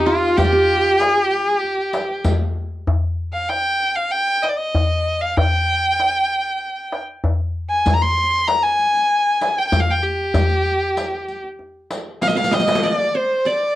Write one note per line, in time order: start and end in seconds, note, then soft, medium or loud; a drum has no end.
0.00 0.86 C4 medium
0.00 1.18 D#4 medium
0.00 0.37 G4 medium
0.05 0.38 F4 medium
0.05 0.44 F4 medium
0.23 riq soft
0.37 1.05 G4 loud
0.37 0.52 G4 medium
0.37 riq medium
0.37 darbuka dum medium
0.45 1.79 F4 medium
0.52 2.21 G4 medium
0.52 riq soft
0.69 riq soft
0.85 riq soft
1.00 riq soft
1.00 darbuka tek medium
1.05 1.20 G#4 loud
1.20 1.43 G4 loud
1.31 riq soft
1.31 darbuka ka soft
1.43 1.57 G#4 loud
1.43 riq soft
1.57 2.24 G4 loud
1.64 darbuka ka soft
1.78 darbuka ka soft
1.93 riq soft
1.93 darbuka tek medium
2.24 riq medium
2.24 darbuka dum medium
2.57 darbuka ka soft
2.87 darbuka dum medium
3.03 darbuka ka soft
3.33 3.50 F5 medium
3.49 3.97 G5 loud
3.49 darbuka tek medium
3.95 4.13 F5 medium
3.95 darbuka ka soft
4.11 4.44 G5 loud
4.43 4.50 D#5 medium
4.43 darbuka tek medium
4.49 4.59 D5 medium
4.57 5.22 D#5 medium
4.75 darbuka dum medium
5.21 5.39 F5 medium
5.37 6.98 G5 loud
5.37 darbuka dum loud
6.00 darbuka tek medium
6.92 darbuka tek medium
7.24 darbuka dum medium
7.70 7.95 G#5 medium
7.86 riq medium
7.86 darbuka dum medium
7.93 8.03 A#5 loud
8.01 8.49 C6 loud
8.01 riq soft
8.01 darbuka ka soft
8.17 riq soft
8.48 8.64 A#5 loud
8.48 riq soft
8.48 darbuka tek medium
8.63 9.60 G#5 loud
8.79 riq soft
8.95 riq soft
8.95 darbuka ka soft
9.41 riq soft
9.41 darbuka tek medium
9.58 9.67 G5 medium
9.67 9.82 G5 medium
9.72 riq medium
9.72 darbuka dum medium
9.80 9.92 F5 medium
9.91 10.04 G5 medium
10.03 11.42 G4 medium
10.03 riq soft
10.34 riq medium
10.34 darbuka dum loud
10.50 riq soft
10.50 darbuka ka soft
10.65 riq soft
10.65 darbuka ka soft
10.82 darbuka ka soft
10.97 riq medium
10.97 darbuka tek medium
11.29 riq soft
11.44 darbuka ka soft
11.59 darbuka ka soft
11.90 riq medium
11.90 darbuka tek medium
12.21 12.29 F5 medium
12.21 12.35 F5 medium
12.21 riq medium
12.21 darbuka tek medium
12.27 12.38 D#5 medium
12.27 riq medium
12.35 13.24 F5 medium
12.35 12.56 F5 medium
12.35 riq medium
12.35 darbuka ka medium
12.44 riq medium
12.51 12.89 D#5 medium
12.51 12.86 D#5 medium
12.51 riq medium
12.51 darbuka tek medium
12.60 riq medium
12.67 riq loud
12.67 darbuka ka medium
12.75 riq loud
12.83 13.46 D5 medium
12.83 13.18 D5 medium
12.83 riq medium
12.98 riq soft
13.15 13.75 C5 medium
13.15 13.49 C5 medium
13.45 13.75 D5 medium
13.45 riq soft